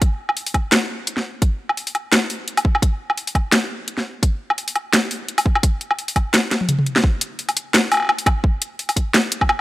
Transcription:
0.02 kick loud
0.02 closed hi-hat medium
0.29 low woodblock soft
0.37 open hi-hat medium
0.47 open hi-hat medium
0.54 kick medium
0.54 closed hi-hat soft
0.54 low woodblock soft
0.72 snare loud
0.72 closed hi-hat medium
1.07 closed hi-hat medium
1.17 snare soft
1.42 kick loud
1.42 closed hi-hat medium
1.69 low woodblock soft
1.77 open hi-hat medium
1.87 open hi-hat medium
1.95 closed hi-hat soft
1.95 low woodblock soft
2.12 snare loud
2.12 closed hi-hat medium
2.30 open hi-hat medium
2.48 closed hi-hat medium
2.57 open hi-hat medium
2.57 low woodblock medium
2.65 kick loud
2.75 low woodblock medium
2.82 kick loud
2.82 closed hi-hat medium
3.10 low woodblock soft
3.17 open hi-hat medium
3.27 open hi-hat medium
3.35 kick medium
3.35 closed hi-hat soft
3.35 low woodblock soft
3.52 snare loud
3.52 closed hi-hat medium
3.88 closed hi-hat medium
3.98 snare soft
4.23 kick loud
4.23 closed hi-hat medium
4.50 low woodblock medium
4.58 open hi-hat medium
4.68 open hi-hat medium
4.76 closed hi-hat soft
4.76 low woodblock soft
4.93 snare loud
4.93 closed hi-hat medium
5.11 open hi-hat medium
5.28 closed hi-hat medium
5.38 open hi-hat medium
5.38 low woodblock medium
5.46 kick loud
5.55 low woodblock medium
5.63 kick loud
5.63 closed hi-hat medium
5.81 closed hi-hat soft
5.91 low woodblock medium
5.99 open hi-hat medium
6.08 open hi-hat medium
6.16 kick medium
6.16 closed hi-hat soft
6.16 low woodblock soft
6.34 snare loud
6.34 closed hi-hat medium
6.51 snare medium
6.51 closed hi-hat soft
6.61 high tom medium
6.69 closed hi-hat medium
6.69 mid tom medium
6.79 mid tom medium
6.86 closed hi-hat soft
6.96 snare medium
7.04 kick loud
7.21 closed hi-hat medium
7.39 open hi-hat medium
7.49 open hi-hat medium
7.49 low woodblock soft
7.57 closed hi-hat medium
7.74 snare loud
7.74 closed hi-hat soft
7.92 open hi-hat medium
7.92 low woodblock medium
7.94 low woodblock soft
7.97 low woodblock soft
8.00 low woodblock soft
8.02 low woodblock soft
8.05 low woodblock soft
8.07 low woodblock soft
8.09 low woodblock medium
8.19 open hi-hat medium
8.26 kick loud
8.26 closed hi-hat medium
8.26 low woodblock medium
8.44 kick loud
8.62 closed hi-hat medium
8.79 open hi-hat medium
8.89 open hi-hat medium
8.89 low woodblock soft
8.96 kick medium
8.96 closed hi-hat medium
9.14 snare loud
9.14 closed hi-hat soft
9.32 closed hi-hat medium
9.41 kick medium
9.41 low woodblock medium
9.49 low woodblock medium

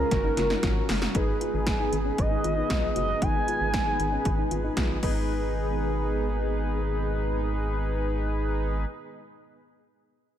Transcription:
0.00 1.11 C#3 medium
0.00 0.10 G#3 medium
0.00 0.21 C#4 medium
0.00 0.89 A#4 medium
0.11 0.30 F#1 loud
0.11 1.14 F#3 medium
0.11 1.14 A#3 medium
0.11 1.13 C#4 medium
0.11 1.13 F#4 medium
0.11 1.14 F#4 medium
0.11 1.13 A#4 medium
0.11 kick loud
0.11 snare medium
0.11 closed hi-hat medium
0.24 0.36 D#4 medium
0.37 0.55 F#1 loud
0.37 0.49 F4 medium
0.37 snare medium
0.37 closed hi-hat medium
0.50 0.61 D#4 medium
0.50 snare medium
0.63 0.81 G#1 loud
0.63 0.86 F4 medium
0.63 kick loud
0.63 snare medium
0.63 closed hi-hat medium
0.89 1.07 F#1 loud
0.89 1.12 F#4 medium
0.89 snare loud
0.89 open hi-hat medium
1.02 snare medium
1.15 1.33 G#1 loud
1.15 4.99 D#3 medium
1.15 4.99 G#3 medium
1.15 4.99 B3 medium
1.15 1.37 D#4 medium
1.15 4.99 D#4 medium
1.15 4.99 G#4 medium
1.15 2.20 G#4 medium
1.15 4.99 G#4 medium
1.15 4.99 B4 medium
1.15 kick loud
1.15 closed hi-hat medium
1.41 1.63 F4 medium
1.41 closed hi-hat medium
1.54 1.72 G#1 loud
1.67 kick loud
1.67 snare loud
1.67 closed hi-hat medium
1.80 2.02 D#4 medium
1.92 2.11 G#1 loud
1.92 closed hi-hat medium
2.05 2.28 C#4 medium
2.18 2.37 G#1 loud
2.18 2.95 D#5 loud
2.18 kick loud
2.18 closed hi-hat medium
2.31 2.42 D#4 medium
2.44 2.62 G#1 loud
2.44 2.56 F4 medium
2.44 closed hi-hat medium
2.57 2.68 D#4 medium
2.70 2.88 B1 loud
2.70 kick loud
2.70 snare loud
2.70 closed hi-hat medium
2.96 3.14 F#1 loud
2.96 3.18 F#4 medium
2.96 3.23 D#5 loud
2.96 closed hi-hat medium
3.22 3.40 G#1 loud
3.22 3.44 D#4 medium
3.22 4.77 G#5 loud
3.22 kick loud
3.22 closed hi-hat medium
3.48 3.70 F4 medium
3.48 closed hi-hat medium
3.61 3.79 G#1 loud
3.74 kick loud
3.74 snare loud
3.74 closed hi-hat medium
3.86 4.09 D#4 medium
3.99 4.17 G#1 loud
3.99 closed hi-hat medium
4.12 4.35 C#4 medium
4.25 4.43 G#1 loud
4.25 kick loud
4.25 closed hi-hat medium
4.38 4.49 D#4 medium
4.51 4.69 G#1 loud
4.51 4.62 F4 medium
4.51 closed hi-hat medium
4.64 4.75 D#4 medium
4.77 4.95 B1 medium
4.77 5.00 F4 medium
4.77 kick loud
4.77 snare loud
4.77 closed hi-hat medium
5.03 8.85 G#1 medium
5.03 8.85 D#3 medium
5.03 8.85 G#3 medium
5.03 8.85 B3 medium
5.03 8.85 D#4 medium
5.03 8.85 G#4 medium
5.03 8.85 B4 medium
5.03 kick loud
5.03 crash medium
5.07 8.89 B3 medium
5.07 8.93 D#4 medium
5.15 8.97 G#4 medium

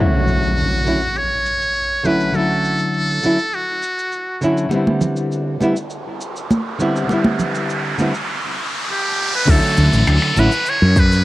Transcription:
0.00 0.81 D3 medium
0.00 0.82 F#3 medium
0.00 0.83 A3 medium
0.00 0.83 C#4 medium
0.00 0.84 E4 medium
0.00 1.19 F#4 medium
0.00 impact medium
0.28 cabasa medium
0.43 cabasa soft
0.57 cabasa soft
0.85 0.99 D3 medium
0.85 0.99 F#3 medium
0.85 0.99 A3 medium
0.85 1.00 C#4 medium
0.85 1.00 E4 medium
0.85 cabasa medium
1.02 cabasa medium
1.16 2.08 C#5 loud
1.16 cabasa soft
1.46 cabasa medium
1.61 cabasa medium
1.75 cabasa soft
2.04 2.31 D3 medium
2.04 2.31 F#3 medium
2.04 2.31 A3 medium
2.04 2.32 C#4 medium
2.04 2.32 E4 medium
2.04 2.37 B4 medium
2.04 cabasa medium
2.20 cabasa soft
2.32 3.19 D3 medium
2.32 3.20 F#3 medium
2.32 3.20 A3 medium
2.32 3.56 A4 loud
2.32 cabasa soft
2.37 3.21 C#4 medium
2.37 3.22 E4 medium
2.65 cabasa medium
2.79 cabasa soft
2.94 cabasa soft
3.23 3.36 D3 medium
3.23 3.36 F#3 medium
3.23 3.37 A3 medium
3.23 3.37 C#4 medium
3.23 3.38 E4 medium
3.23 cabasa medium
3.38 cabasa medium
3.53 4.43 F#4 medium
3.53 cabasa soft
3.83 cabasa medium
3.98 cabasa medium
4.12 cabasa soft
4.41 4.68 D3 medium
4.41 4.68 F#3 medium
4.41 4.69 A3 medium
4.41 4.69 C#4 medium
4.41 4.70 E4 medium
4.41 cabasa medium
4.57 cabasa medium
4.69 5.56 D3 medium
4.69 5.57 G3 medium
4.69 5.58 B3 medium
4.69 riser medium
4.69 muted conga soft
4.69 cabasa soft
4.74 5.59 C4 medium
4.74 5.60 E4 medium
4.87 high conga medium
5.01 low conga medium
5.01 cabasa medium
5.17 cabasa medium
5.32 cabasa soft
5.60 5.74 D3 medium
5.60 5.74 G3 medium
5.60 5.75 B3 medium
5.60 5.75 C4 medium
5.60 5.75 E4 medium
5.60 high conga medium
5.60 cabasa medium
5.76 cabasa medium
5.90 cabasa soft
6.21 cabasa medium
6.36 cabasa medium
6.51 high conga medium
6.51 cabasa soft
6.78 7.06 D3 medium
6.78 7.06 G3 medium
6.78 7.07 B3 medium
6.78 7.07 C4 medium
6.78 7.07 E4 loud
6.78 cabasa medium
6.96 cabasa soft
7.07 7.94 D3 medium
7.07 7.95 G3 medium
7.07 7.96 B3 medium
7.07 muted conga medium
7.07 cabasa soft
7.12 7.96 C4 medium
7.12 7.97 E4 medium
7.24 high conga medium
7.39 low conga medium
7.39 cabasa medium
7.55 cabasa medium
7.70 cabasa medium
7.98 8.11 D3 medium
7.98 8.12 G3 medium
7.98 8.12 B3 medium
7.98 8.13 C4 medium
7.98 8.13 E4 medium
7.98 high conga medium
7.98 cabasa medium
8.14 cabasa medium
8.90 9.31 G4 medium
9.35 9.52 B4 medium
9.45 9.58 D2 medium
9.45 10.32 D3 medium
9.45 10.33 F#3 medium
9.45 10.34 A3 medium
9.45 kick loud
9.45 downlifter medium
9.45 cabasa soft
9.50 10.34 C#4 medium
9.50 10.35 E4 medium
9.50 10.41 A4 loud
9.62 open hi-hat medium
9.77 9.88 D2 medium
9.77 cabasa medium
9.93 10.03 A1 medium
9.93 open hi-hat medium
9.93 cabasa medium
10.07 10.17 D2 medium
10.07 finger snap loud
10.07 cabasa soft
10.22 finger snap soft
10.22 open hi-hat medium
10.36 10.47 A1 medium
10.36 10.49 D3 medium
10.36 10.50 F#3 medium
10.36 10.50 A3 medium
10.36 10.50 C#4 medium
10.36 10.51 E4 medium
10.36 10.71 B4 loud
10.36 cabasa medium
10.52 open hi-hat medium
10.52 cabasa medium
10.66 11.01 C#5 loud
10.66 cabasa soft
10.82 11.24 F#2 medium
10.96 11.24 B4 loud
10.96 kick loud
10.96 cabasa medium
11.12 open hi-hat medium
11.12 cabasa medium

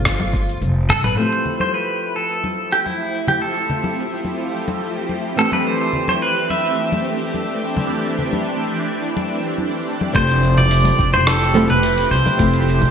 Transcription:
0.00 0.61 G1 medium
0.00 0.85 F3 medium
0.00 0.86 A3 medium
0.00 0.86 C4 medium
0.00 0.87 D4 medium
0.00 0.58 F4 medium
0.00 0.87 G4 medium
0.05 kick loud
0.05 cross-stick medium
0.05 shaker soft
0.20 high conga medium
0.34 kick medium
0.34 shaker medium
0.49 shaker soft
0.61 0.91 F1 medium
0.61 high conga medium
0.61 shaker soft
0.89 0.99 G2 medium
0.89 1.03 A4 loud
0.89 high tom medium
0.89 shaker medium
1.04 1.13 G1 medium
1.04 1.17 B4 loud
1.04 mid tom medium
1.04 high conga medium
1.04 shaker soft
1.16 5.34 F3 medium
1.16 5.34 A3 medium
1.16 10.11 A3 medium
1.16 10.11 C4 medium
1.16 5.35 C4 medium
1.16 5.34 E4 medium
1.16 5.36 E4 medium
1.16 10.11 G4 medium
1.16 1.60 C5 medium
1.20 5.36 G4 medium
1.46 low conga medium
1.60 1.73 C5 medium
1.60 high conga medium
1.74 2.16 B4 medium
2.16 2.74 A4 medium
2.44 high conga medium
2.72 2.85 G4 medium
2.86 3.28 E4 medium
2.86 high conga soft
3.28 3.41 G4 medium
3.28 high conga medium
3.28 low conga medium
3.42 3.98 A4 medium
3.70 low conga medium
3.84 high conga medium
4.25 high conga medium
4.68 high conga medium
5.09 high conga medium
5.36 9.82 E3 medium
5.36 10.11 E3 medium
5.36 9.83 A3 medium
5.36 9.83 C4 medium
5.36 10.11 D4 medium
5.36 9.84 D4 medium
5.36 5.52 A4 medium
5.40 9.84 G4 medium
5.52 5.67 B4 medium
5.52 high conga medium
5.67 6.08 C5 medium
5.93 low conga medium
6.08 6.14 C5 medium
6.08 high conga medium
6.22 6.48 B4 medium
6.50 9.55 E5 medium
6.50 high conga medium
6.92 high conga medium
7.34 high conga medium
7.77 high conga medium
7.77 low conga medium
8.19 low conga medium
8.33 high conga medium
9.17 high conga medium
9.58 high conga medium
10.01 high conga medium
10.13 10.92 F1 loud
10.13 11.51 F3 medium
10.13 12.91 F3 medium
10.13 11.51 A3 medium
10.13 12.91 A3 medium
10.13 12.91 C4 medium
10.13 11.52 C4 medium
10.13 12.37 E4 medium
10.13 11.52 E4 medium
10.13 12.91 G4 medium
10.13 10.55 C5 loud
10.13 kick loud
10.13 open hi-hat medium
10.13 shaker soft
10.17 11.53 G4 medium
10.29 open hi-hat soft
10.29 shaker soft
10.44 shaker medium
10.57 11.13 D5 loud
10.57 open hi-hat soft
10.57 low conga medium
10.57 shaker soft
10.71 open hi-hat medium
10.71 shaker soft
10.84 open hi-hat soft
10.84 high conga medium
10.99 12.04 F1 medium
10.99 kick loud
10.99 shaker medium
11.13 11.27 C5 medium
11.13 open hi-hat soft
11.13 low conga medium
11.13 shaker soft
11.27 11.67 A4 loud
11.27 cross-stick medium
11.27 open hi-hat medium
11.27 shaker soft
11.41 open hi-hat soft
11.41 shaker soft
11.54 11.69 F3 loud
11.54 11.69 A3 medium
11.54 11.69 C4 medium
11.54 11.69 E4 medium
11.54 11.70 G4 loud
11.54 high conga medium
11.54 shaker medium
11.70 12.11 B4 medium
11.70 open hi-hat soft
11.70 low conga medium
11.70 shaker soft
11.83 open hi-hat medium
11.83 shaker soft
11.98 open hi-hat soft
11.98 shaker soft
12.11 12.20 C2 medium
12.11 12.91 C5 medium
12.11 shaker medium
12.26 open hi-hat soft
12.26 high conga medium
12.26 low conga medium
12.26 shaker soft
12.37 12.91 F1 loud
12.37 12.91 F3 medium
12.37 12.91 A3 medium
12.37 12.91 C4 medium
12.37 12.91 E4 medium
12.37 kick loud
12.37 open hi-hat medium
12.37 shaker soft
12.41 12.91 G4 medium
12.54 open hi-hat soft
12.54 shaker soft
12.68 shaker medium
12.82 kick medium
12.82 open hi-hat soft
12.82 low conga medium
12.82 shaker soft

